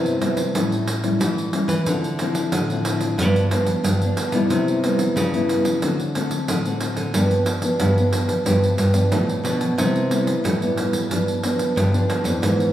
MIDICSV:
0, 0, Header, 1, 4, 480
1, 0, Start_track
1, 0, Tempo, 660066
1, 1353, Time_signature, 4, 2, 24, 8
1, 9255, End_track
2, 0, Start_track
2, 0, Title_t, "Nylon-string guitar"
2, 0, Program_c, 0, 24
2, 0, Note_on_c, 0, 43, 51
2, 0, Note_on_c, 0, 55, 53
2, 0, Note_on_c, 0, 59, 60
2, 0, Note_on_c, 0, 64, 60
2, 113, Note_off_c, 0, 55, 0
2, 116, Note_off_c, 0, 59, 0
2, 116, Note_off_c, 0, 64, 0
2, 152, Note_on_c, 0, 55, 53
2, 156, Note_on_c, 0, 64, 59
2, 157, Note_on_c, 0, 59, 53
2, 294, Note_off_c, 0, 55, 0
2, 295, Note_off_c, 0, 59, 0
2, 296, Note_off_c, 0, 64, 0
2, 373, Note_off_c, 0, 43, 0
2, 400, Note_on_c, 0, 45, 55
2, 403, Note_on_c, 0, 55, 56
2, 404, Note_on_c, 0, 61, 56
2, 408, Note_on_c, 0, 64, 54
2, 623, Note_off_c, 0, 55, 0
2, 624, Note_off_c, 0, 61, 0
2, 626, Note_off_c, 0, 64, 0
2, 751, Note_on_c, 0, 55, 59
2, 754, Note_on_c, 0, 61, 61
2, 757, Note_on_c, 0, 64, 58
2, 853, Note_off_c, 0, 45, 0
2, 881, Note_on_c, 0, 52, 52
2, 1073, Note_off_c, 0, 55, 0
2, 1076, Note_off_c, 0, 61, 0
2, 1076, Note_off_c, 0, 64, 0
2, 1120, Note_on_c, 0, 55, 55
2, 1122, Note_on_c, 0, 61, 55
2, 1125, Note_on_c, 0, 64, 63
2, 1271, Note_off_c, 0, 61, 0
2, 1272, Note_off_c, 0, 55, 0
2, 1274, Note_off_c, 0, 64, 0
2, 1333, Note_off_c, 0, 52, 0
2, 1371, Note_on_c, 0, 50, 49
2, 1374, Note_on_c, 0, 53, 55
2, 1374, Note_on_c, 0, 60, 45
2, 1379, Note_on_c, 0, 64, 62
2, 1503, Note_off_c, 0, 53, 0
2, 1505, Note_off_c, 0, 60, 0
2, 1506, Note_off_c, 0, 64, 0
2, 1605, Note_on_c, 0, 53, 57
2, 1610, Note_on_c, 0, 60, 55
2, 1611, Note_on_c, 0, 64, 56
2, 1818, Note_off_c, 0, 50, 0
2, 1825, Note_off_c, 0, 53, 0
2, 1826, Note_off_c, 0, 60, 0
2, 1827, Note_off_c, 0, 64, 0
2, 1853, Note_on_c, 0, 45, 54
2, 1971, Note_on_c, 0, 53, 55
2, 1974, Note_on_c, 0, 60, 59
2, 1978, Note_on_c, 0, 64, 65
2, 2283, Note_off_c, 0, 53, 0
2, 2285, Note_off_c, 0, 60, 0
2, 2287, Note_off_c, 0, 64, 0
2, 2299, Note_off_c, 0, 45, 0
2, 2322, Note_on_c, 0, 43, 53
2, 2325, Note_on_c, 0, 53, 51
2, 2328, Note_on_c, 0, 59, 53
2, 2331, Note_on_c, 0, 62, 57
2, 2520, Note_off_c, 0, 53, 0
2, 2521, Note_off_c, 0, 59, 0
2, 2523, Note_off_c, 0, 62, 0
2, 2557, Note_on_c, 0, 53, 59
2, 2560, Note_on_c, 0, 59, 61
2, 2566, Note_on_c, 0, 62, 57
2, 2774, Note_off_c, 0, 43, 0
2, 2780, Note_off_c, 0, 53, 0
2, 2782, Note_off_c, 0, 59, 0
2, 2785, Note_off_c, 0, 62, 0
2, 2804, Note_on_c, 0, 50, 53
2, 2933, Note_on_c, 0, 53, 55
2, 2938, Note_on_c, 0, 59, 57
2, 2943, Note_on_c, 0, 62, 67
2, 3124, Note_off_c, 0, 53, 0
2, 3127, Note_off_c, 0, 59, 0
2, 3128, Note_off_c, 0, 62, 0
2, 3154, Note_on_c, 0, 55, 59
2, 3156, Note_on_c, 0, 59, 58
2, 3159, Note_on_c, 0, 64, 66
2, 3254, Note_off_c, 0, 50, 0
2, 3291, Note_on_c, 0, 48, 50
2, 3475, Note_off_c, 0, 55, 0
2, 3476, Note_off_c, 0, 59, 0
2, 3478, Note_off_c, 0, 64, 0
2, 3523, Note_on_c, 0, 55, 55
2, 3527, Note_on_c, 0, 59, 50
2, 3530, Note_on_c, 0, 64, 54
2, 3738, Note_off_c, 0, 48, 0
2, 3764, Note_on_c, 0, 43, 56
2, 3840, Note_off_c, 0, 55, 0
2, 3842, Note_off_c, 0, 59, 0
2, 3843, Note_off_c, 0, 64, 0
2, 3884, Note_on_c, 0, 55, 54
2, 3889, Note_on_c, 0, 59, 60
2, 3890, Note_on_c, 0, 64, 64
2, 4200, Note_off_c, 0, 55, 0
2, 4202, Note_off_c, 0, 59, 0
2, 4203, Note_off_c, 0, 64, 0
2, 4214, Note_off_c, 0, 43, 0
2, 4236, Note_on_c, 0, 50, 52
2, 4241, Note_on_c, 0, 57, 54
2, 4242, Note_on_c, 0, 66, 64
2, 4243, Note_on_c, 0, 60, 55
2, 4377, Note_off_c, 0, 60, 0
2, 4378, Note_off_c, 0, 57, 0
2, 4379, Note_off_c, 0, 66, 0
2, 4474, Note_on_c, 0, 57, 53
2, 4479, Note_on_c, 0, 60, 55
2, 4481, Note_on_c, 0, 66, 59
2, 4691, Note_off_c, 0, 50, 0
2, 4719, Note_on_c, 0, 45, 53
2, 4796, Note_off_c, 0, 57, 0
2, 4797, Note_off_c, 0, 60, 0
2, 4799, Note_off_c, 0, 66, 0
2, 4847, Note_on_c, 0, 57, 57
2, 4851, Note_on_c, 0, 60, 55
2, 4855, Note_on_c, 0, 66, 60
2, 5163, Note_off_c, 0, 57, 0
2, 5163, Note_off_c, 0, 60, 0
2, 5166, Note_off_c, 0, 66, 0
2, 5172, Note_off_c, 0, 45, 0
2, 5199, Note_on_c, 0, 43, 53
2, 5200, Note_on_c, 0, 53, 52
2, 5203, Note_on_c, 0, 59, 48
2, 5208, Note_on_c, 0, 62, 56
2, 5518, Note_off_c, 0, 53, 0
2, 5520, Note_off_c, 0, 59, 0
2, 5523, Note_off_c, 0, 62, 0
2, 5545, Note_on_c, 0, 53, 53
2, 5550, Note_on_c, 0, 59, 59
2, 5556, Note_on_c, 0, 62, 60
2, 5653, Note_off_c, 0, 43, 0
2, 5673, Note_on_c, 0, 50, 54
2, 5751, Note_off_c, 0, 53, 0
2, 5753, Note_off_c, 0, 59, 0
2, 5756, Note_off_c, 0, 62, 0
2, 5801, Note_on_c, 0, 53, 52
2, 5806, Note_on_c, 0, 59, 57
2, 5806, Note_on_c, 0, 62, 56
2, 6119, Note_off_c, 0, 53, 0
2, 6121, Note_off_c, 0, 62, 0
2, 6122, Note_off_c, 0, 59, 0
2, 6129, Note_off_c, 0, 50, 0
2, 6146, Note_on_c, 0, 43, 53
2, 6149, Note_on_c, 0, 53, 58
2, 6150, Note_on_c, 0, 59, 56
2, 6155, Note_on_c, 0, 62, 60
2, 6376, Note_off_c, 0, 53, 0
2, 6377, Note_off_c, 0, 59, 0
2, 6380, Note_off_c, 0, 62, 0
2, 6500, Note_on_c, 0, 53, 61
2, 6505, Note_on_c, 0, 59, 57
2, 6508, Note_on_c, 0, 62, 60
2, 6607, Note_off_c, 0, 43, 0
2, 6634, Note_on_c, 0, 50, 55
2, 6829, Note_off_c, 0, 53, 0
2, 6831, Note_off_c, 0, 59, 0
2, 6833, Note_off_c, 0, 62, 0
2, 6870, Note_on_c, 0, 53, 51
2, 6874, Note_on_c, 0, 59, 50
2, 6876, Note_on_c, 0, 62, 58
2, 7074, Note_off_c, 0, 53, 0
2, 7076, Note_off_c, 0, 59, 0
2, 7077, Note_off_c, 0, 62, 0
2, 7090, Note_off_c, 0, 50, 0
2, 7114, Note_on_c, 0, 48, 50
2, 7119, Note_on_c, 0, 55, 45
2, 7120, Note_on_c, 0, 59, 47
2, 7126, Note_on_c, 0, 64, 54
2, 7257, Note_off_c, 0, 55, 0
2, 7259, Note_off_c, 0, 59, 0
2, 7260, Note_off_c, 0, 64, 0
2, 7347, Note_on_c, 0, 55, 50
2, 7351, Note_on_c, 0, 59, 51
2, 7356, Note_on_c, 0, 64, 57
2, 7572, Note_off_c, 0, 48, 0
2, 7576, Note_off_c, 0, 55, 0
2, 7578, Note_off_c, 0, 59, 0
2, 7581, Note_off_c, 0, 64, 0
2, 7592, Note_on_c, 0, 43, 52
2, 7717, Note_on_c, 0, 55, 56
2, 7718, Note_on_c, 0, 59, 52
2, 7721, Note_on_c, 0, 64, 57
2, 8038, Note_off_c, 0, 55, 0
2, 8038, Note_off_c, 0, 59, 0
2, 8040, Note_off_c, 0, 64, 0
2, 8050, Note_off_c, 0, 43, 0
2, 8081, Note_on_c, 0, 43, 52
2, 8083, Note_on_c, 0, 53, 50
2, 8084, Note_on_c, 0, 59, 52
2, 8086, Note_on_c, 0, 62, 57
2, 8281, Note_off_c, 0, 53, 0
2, 8281, Note_off_c, 0, 59, 0
2, 8281, Note_off_c, 0, 62, 0
2, 8316, Note_on_c, 0, 53, 50
2, 8320, Note_on_c, 0, 59, 55
2, 8324, Note_on_c, 0, 62, 62
2, 8535, Note_off_c, 0, 43, 0
2, 8541, Note_off_c, 0, 53, 0
2, 8543, Note_off_c, 0, 59, 0
2, 8545, Note_off_c, 0, 62, 0
2, 8561, Note_on_c, 0, 50, 52
2, 8676, Note_on_c, 0, 53, 54
2, 8681, Note_on_c, 0, 59, 59
2, 8682, Note_on_c, 0, 62, 62
2, 8878, Note_off_c, 0, 53, 0
2, 8879, Note_off_c, 0, 59, 0
2, 8881, Note_off_c, 0, 62, 0
2, 8907, Note_on_c, 0, 52, 58
2, 8911, Note_on_c, 0, 59, 61
2, 8913, Note_on_c, 0, 62, 60
2, 9015, Note_off_c, 0, 50, 0
2, 9039, Note_on_c, 0, 44, 49
2, 9234, Note_off_c, 0, 52, 0
2, 9234, Note_off_c, 0, 59, 0
2, 9236, Note_off_c, 0, 62, 0
2, 9255, Note_off_c, 0, 44, 0
2, 9255, End_track
3, 0, Start_track
3, 0, Title_t, "Nylon-string guitar"
3, 0, Program_c, 1, 24
3, 0, Note_on_c, 1, 48, 80
3, 395, Note_off_c, 1, 48, 0
3, 395, Note_on_c, 1, 45, 90
3, 802, Note_off_c, 1, 45, 0
3, 874, Note_on_c, 1, 45, 82
3, 1078, Note_off_c, 1, 45, 0
3, 1221, Note_on_c, 1, 52, 86
3, 1328, Note_off_c, 1, 52, 0
3, 1352, Note_on_c, 1, 50, 84
3, 1760, Note_off_c, 1, 50, 0
3, 1835, Note_on_c, 1, 50, 84
3, 2312, Note_on_c, 1, 43, 86
3, 2314, Note_off_c, 1, 50, 0
3, 2720, Note_off_c, 1, 43, 0
3, 2790, Note_on_c, 1, 43, 79
3, 2995, Note_off_c, 1, 43, 0
3, 3142, Note_on_c, 1, 47, 89
3, 3248, Note_off_c, 1, 47, 0
3, 3271, Note_on_c, 1, 48, 85
3, 3680, Note_off_c, 1, 48, 0
3, 3751, Note_on_c, 1, 49, 84
3, 4236, Note_off_c, 1, 49, 0
3, 4236, Note_on_c, 1, 50, 82
3, 4643, Note_off_c, 1, 50, 0
3, 4717, Note_on_c, 1, 50, 86
3, 4919, Note_off_c, 1, 50, 0
3, 5067, Note_on_c, 1, 50, 82
3, 5172, Note_off_c, 1, 50, 0
3, 5196, Note_on_c, 1, 43, 85
3, 5603, Note_off_c, 1, 43, 0
3, 5673, Note_on_c, 1, 43, 80
3, 6082, Note_off_c, 1, 43, 0
3, 6153, Note_on_c, 1, 43, 83
3, 6357, Note_off_c, 1, 43, 0
3, 6388, Note_on_c, 1, 43, 77
3, 6607, Note_off_c, 1, 43, 0
3, 6634, Note_on_c, 1, 45, 74
3, 6850, Note_off_c, 1, 45, 0
3, 6861, Note_on_c, 1, 47, 73
3, 7083, Note_off_c, 1, 47, 0
3, 7109, Note_on_c, 1, 48, 86
3, 7520, Note_off_c, 1, 48, 0
3, 7591, Note_on_c, 1, 45, 80
3, 8073, Note_off_c, 1, 45, 0
3, 8073, Note_on_c, 1, 43, 85
3, 8482, Note_off_c, 1, 43, 0
3, 8552, Note_on_c, 1, 43, 81
3, 8758, Note_off_c, 1, 43, 0
3, 8902, Note_on_c, 1, 41, 83
3, 9010, Note_off_c, 1, 41, 0
3, 9033, Note_on_c, 1, 44, 88
3, 9255, Note_off_c, 1, 44, 0
3, 9255, End_track
4, 0, Start_track
4, 0, Title_t, "Pandeiro"
4, 42, Note_on_c, 9, 54, 30
4, 115, Note_off_c, 9, 54, 0
4, 157, Note_on_c, 9, 54, 63
4, 229, Note_off_c, 9, 54, 0
4, 269, Note_on_c, 9, 54, 52
4, 341, Note_off_c, 9, 54, 0
4, 400, Note_on_c, 9, 54, 76
4, 472, Note_off_c, 9, 54, 0
4, 525, Note_on_c, 9, 54, 33
4, 597, Note_off_c, 9, 54, 0
4, 637, Note_on_c, 9, 54, 65
4, 709, Note_off_c, 9, 54, 0
4, 754, Note_on_c, 9, 54, 53
4, 826, Note_off_c, 9, 54, 0
4, 878, Note_on_c, 9, 54, 77
4, 951, Note_off_c, 9, 54, 0
4, 1005, Note_on_c, 9, 54, 31
4, 1078, Note_off_c, 9, 54, 0
4, 1113, Note_on_c, 9, 54, 60
4, 1186, Note_off_c, 9, 54, 0
4, 1227, Note_on_c, 9, 54, 57
4, 1300, Note_off_c, 9, 54, 0
4, 1355, Note_on_c, 9, 54, 69
4, 1428, Note_off_c, 9, 54, 0
4, 1484, Note_on_c, 9, 54, 31
4, 1557, Note_off_c, 9, 54, 0
4, 1591, Note_on_c, 9, 54, 65
4, 1664, Note_off_c, 9, 54, 0
4, 1708, Note_on_c, 9, 54, 55
4, 1780, Note_off_c, 9, 54, 0
4, 1834, Note_on_c, 9, 54, 79
4, 1906, Note_off_c, 9, 54, 0
4, 1963, Note_on_c, 9, 54, 30
4, 2036, Note_off_c, 9, 54, 0
4, 2072, Note_on_c, 9, 54, 68
4, 2145, Note_off_c, 9, 54, 0
4, 2186, Note_on_c, 9, 54, 54
4, 2258, Note_off_c, 9, 54, 0
4, 2318, Note_on_c, 9, 54, 72
4, 2390, Note_off_c, 9, 54, 0
4, 2443, Note_on_c, 9, 54, 31
4, 2516, Note_off_c, 9, 54, 0
4, 2554, Note_on_c, 9, 54, 64
4, 2627, Note_off_c, 9, 54, 0
4, 2665, Note_on_c, 9, 54, 54
4, 2738, Note_off_c, 9, 54, 0
4, 2795, Note_on_c, 9, 54, 73
4, 2868, Note_off_c, 9, 54, 0
4, 2920, Note_on_c, 9, 54, 32
4, 2993, Note_off_c, 9, 54, 0
4, 3032, Note_on_c, 9, 54, 62
4, 3105, Note_off_c, 9, 54, 0
4, 3144, Note_on_c, 9, 54, 56
4, 3216, Note_off_c, 9, 54, 0
4, 3275, Note_on_c, 9, 54, 73
4, 3347, Note_off_c, 9, 54, 0
4, 3404, Note_on_c, 9, 54, 32
4, 3477, Note_off_c, 9, 54, 0
4, 3517, Note_on_c, 9, 54, 61
4, 3590, Note_off_c, 9, 54, 0
4, 3628, Note_on_c, 9, 54, 55
4, 3700, Note_off_c, 9, 54, 0
4, 3758, Note_on_c, 9, 54, 75
4, 3831, Note_off_c, 9, 54, 0
4, 3882, Note_on_c, 9, 54, 30
4, 3954, Note_off_c, 9, 54, 0
4, 3995, Note_on_c, 9, 54, 60
4, 4067, Note_off_c, 9, 54, 0
4, 4109, Note_on_c, 9, 54, 52
4, 4181, Note_off_c, 9, 54, 0
4, 4234, Note_on_c, 9, 54, 76
4, 4306, Note_off_c, 9, 54, 0
4, 4360, Note_on_c, 9, 54, 31
4, 4433, Note_off_c, 9, 54, 0
4, 4474, Note_on_c, 9, 54, 61
4, 4547, Note_off_c, 9, 54, 0
4, 4587, Note_on_c, 9, 54, 52
4, 4660, Note_off_c, 9, 54, 0
4, 4715, Note_on_c, 9, 54, 71
4, 4787, Note_off_c, 9, 54, 0
4, 4839, Note_on_c, 9, 54, 33
4, 4911, Note_off_c, 9, 54, 0
4, 4949, Note_on_c, 9, 54, 60
4, 5021, Note_off_c, 9, 54, 0
4, 5065, Note_on_c, 9, 54, 53
4, 5138, Note_off_c, 9, 54, 0
4, 5192, Note_on_c, 9, 54, 73
4, 5265, Note_off_c, 9, 54, 0
4, 5314, Note_on_c, 9, 54, 32
4, 5387, Note_off_c, 9, 54, 0
4, 5425, Note_on_c, 9, 54, 63
4, 5498, Note_off_c, 9, 54, 0
4, 5541, Note_on_c, 9, 54, 57
4, 5613, Note_off_c, 9, 54, 0
4, 5669, Note_on_c, 9, 54, 80
4, 5742, Note_off_c, 9, 54, 0
4, 5801, Note_on_c, 9, 54, 32
4, 5874, Note_off_c, 9, 54, 0
4, 5909, Note_on_c, 9, 54, 65
4, 5982, Note_off_c, 9, 54, 0
4, 6027, Note_on_c, 9, 54, 57
4, 6099, Note_off_c, 9, 54, 0
4, 6152, Note_on_c, 9, 54, 72
4, 6224, Note_off_c, 9, 54, 0
4, 6280, Note_on_c, 9, 54, 32
4, 6352, Note_off_c, 9, 54, 0
4, 6386, Note_on_c, 9, 54, 61
4, 6459, Note_off_c, 9, 54, 0
4, 6500, Note_on_c, 9, 54, 55
4, 6572, Note_off_c, 9, 54, 0
4, 6630, Note_on_c, 9, 54, 76
4, 6703, Note_off_c, 9, 54, 0
4, 6759, Note_on_c, 9, 54, 31
4, 6831, Note_off_c, 9, 54, 0
4, 6870, Note_on_c, 9, 54, 58
4, 6943, Note_off_c, 9, 54, 0
4, 6987, Note_on_c, 9, 54, 53
4, 7060, Note_off_c, 9, 54, 0
4, 7115, Note_on_c, 9, 54, 73
4, 7188, Note_off_c, 9, 54, 0
4, 7240, Note_on_c, 9, 54, 31
4, 7313, Note_off_c, 9, 54, 0
4, 7353, Note_on_c, 9, 54, 61
4, 7426, Note_off_c, 9, 54, 0
4, 7471, Note_on_c, 9, 54, 55
4, 7543, Note_off_c, 9, 54, 0
4, 7599, Note_on_c, 9, 54, 79
4, 7671, Note_off_c, 9, 54, 0
4, 7723, Note_on_c, 9, 54, 32
4, 7796, Note_off_c, 9, 54, 0
4, 7835, Note_on_c, 9, 54, 64
4, 7908, Note_off_c, 9, 54, 0
4, 7950, Note_on_c, 9, 54, 53
4, 8023, Note_off_c, 9, 54, 0
4, 8079, Note_on_c, 9, 54, 71
4, 8152, Note_off_c, 9, 54, 0
4, 8204, Note_on_c, 9, 54, 33
4, 8276, Note_off_c, 9, 54, 0
4, 8315, Note_on_c, 9, 54, 61
4, 8388, Note_off_c, 9, 54, 0
4, 8431, Note_on_c, 9, 54, 53
4, 8503, Note_off_c, 9, 54, 0
4, 8562, Note_on_c, 9, 54, 70
4, 8634, Note_off_c, 9, 54, 0
4, 8685, Note_on_c, 9, 54, 33
4, 8757, Note_off_c, 9, 54, 0
4, 8797, Note_on_c, 9, 54, 61
4, 8869, Note_off_c, 9, 54, 0
4, 8909, Note_on_c, 9, 54, 54
4, 8982, Note_off_c, 9, 54, 0
4, 9039, Note_on_c, 9, 54, 72
4, 9111, Note_off_c, 9, 54, 0
4, 9164, Note_on_c, 9, 54, 32
4, 9236, Note_off_c, 9, 54, 0
4, 9255, End_track
0, 0, End_of_file